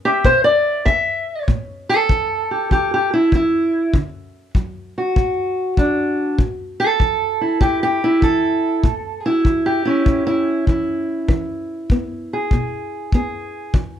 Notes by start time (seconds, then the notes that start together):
0.05 G4 E5
0.24 B2 C5, kick
0.44 D5
0.85 G#4 E5, kick
1.48 A2, kick
1.89 A4
2.09 E3, kick
2.51 G4
2.71 E3 G4, kick
2.94 G4
3.13 E4
3.32 E3 E4, kick
3.93 D3, kick
4.55 F#3, kick
4.98 F#4
5.16 A2, kick
5.77 F#3 D4, kick
6.38 A2, kick
6.80 A4
7.00 E3, kick
7.41 E4
7.61 A2 G4, kick
7.83 G4
8.04 E4
8.22 E3 A4, kick
8.83 A2, kick
9.26 E4
9.45 E3, kick
9.66 G4
9.85 C#4 E4
10.06 A2, kick
10.27 E4
10.67 E3 E4, kick
11.28 E3, kick
11.90 B3, kick
12.33 G#4
12.51 B2, kick
13.12 B3 G#4, kick
13.74 E3, kick